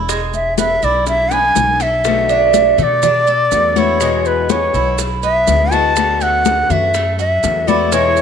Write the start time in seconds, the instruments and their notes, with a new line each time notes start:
Already playing: upright bass E1
0.09 cuban tres G#3, high bongo, high conga, maracas
0.34 bansuri E5, high bongo, high conga, maracas
0.58 cuban tres B3, bansuri E5, high bongo, high conga, maracas
0.82 upright bass B1, cuban tres E4, bansuri D5, high bongo, high conga, maracas
1.07 bansuri E5, high bongo, high conga, maracas
1.31 cuban tres B3, bansuri G#5, low bongo, high conga, maracas
1.55 upright bass B1, low bongo, high conga, maracas
1.80 cuban tres A4, bansuri E5, low bongo, high conga, maracas
2.04 steel-string acoustic guitar B2 D3 A3 B3 F#4, high bongo, high conga, maracas
2.29 cuban tres D4, high bongo, high conga, maracas
2.53 steel-string acoustic guitar D3 A3 B3 F#4, high bongo, high conga, maracas
2.78 upright bass B2, cuban tres A3, bansuri E5, high bongo, high conga, low conga, maracas
2.83 bansuri D5
3.02 cuban tres D4, muted steel-string acoustic guitar stroke, high bongo, high conga, low conga, maracas
3.27 cuban tres A4, high conga, maracas
3.51 upright bass E2, steel-string acoustic guitar D3 A3 B3 F#4, high bongo, low bongo, high conga, maracas
3.76 steel-string acoustic guitar D3 A3 B3 F#4, cuban tres E4, bansuri C#5, high bongo, high conga, maracas
4.00 steel-string acoustic guitar B2 E3 G#3 B3 F#4, cuban tres G#3, high bongo, high conga, maracas
4.25 bansuri B4, high bongo, high conga, maracas
4.49 steel-string acoustic guitar E3 G#3 B3 F#4, cuban tres B3, bansuri C#5, high bongo, high conga, maracas
4.74 upright bass B1, cuban tres E4, high bongo, high conga, maracas
4.98 muted steel-string acoustic guitar stroke, high bongo, high conga, maracas
5.23 cuban tres B3, bansuri E5, high conga, maracas
5.47 upright bass D2, steel-string acoustic guitar E3 G#3 B3 F#4, high bongo, low bongo, high conga, maracas
5.71 steel-string acoustic guitar E3 G#3 B3 F#4, cuban tres F#4, bansuri A5, high bongo, high conga, maracas
5.96 steel-string acoustic guitar D3 A3 B3 F#4, high bongo, high conga, maracas
6.21 cuban tres A3, bansuri F#5, high bongo, high conga, maracas
6.45 steel-string acoustic guitar D3 A3 B3 F#4, high bongo, high conga, maracas
6.70 upright bass F#2, cuban tres F#4, bansuri E5, high bongo, high conga, low conga, maracas
6.94 cuban tres A3, muted steel-string acoustic guitar stroke, high bongo, high conga, maracas
7.19 cuban tres F#4, bansuri E5, high conga, maracas
7.43 upright bass E2, steel-string acoustic guitar D3 A3 B3 F#4, high bongo, low bongo, high conga, maracas
7.67 steel-string acoustic guitar A3 B3 F#4, cuban tres E4, bansuri D5, high bongo, high conga, maracas
7.92 steel-string acoustic guitar B2 E3 G#3 B3 E4, cuban tres G#3, bansuri C#5, high bongo, high conga, maracas
8.16 high bongo, high conga, maracas